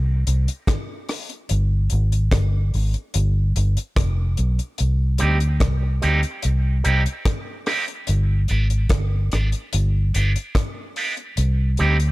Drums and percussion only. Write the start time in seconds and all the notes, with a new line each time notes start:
0.27 closed hi-hat
0.48 closed hi-hat
0.67 kick, cross-stick, closed hi-hat
1.09 cross-stick, open hi-hat
1.30 closed hi-hat
1.49 closed hi-hat
1.90 closed hi-hat
2.12 closed hi-hat
2.31 kick, cross-stick, closed hi-hat
2.74 open hi-hat
2.94 closed hi-hat
3.14 closed hi-hat
3.56 closed hi-hat
3.77 closed hi-hat
3.96 kick, cross-stick, closed hi-hat
4.37 closed hi-hat
4.59 closed hi-hat
4.78 closed hi-hat
5.18 closed hi-hat
5.40 closed hi-hat
5.60 kick, cross-stick, closed hi-hat
6.02 closed hi-hat
6.23 closed hi-hat
6.42 closed hi-hat
6.85 closed hi-hat
7.06 closed hi-hat
7.25 kick, cross-stick, closed hi-hat
7.66 cross-stick, open hi-hat
7.88 closed hi-hat
8.07 closed hi-hat
8.48 closed hi-hat
8.70 closed hi-hat
8.89 kick, cross-stick, closed hi-hat
9.32 cross-stick, closed hi-hat
9.52 closed hi-hat
9.73 closed hi-hat
10.14 closed hi-hat
10.36 closed hi-hat
10.55 kick, cross-stick, closed hi-hat
10.96 open hi-hat
11.17 closed hi-hat
11.37 closed hi-hat
11.77 closed hi-hat
12.00 closed hi-hat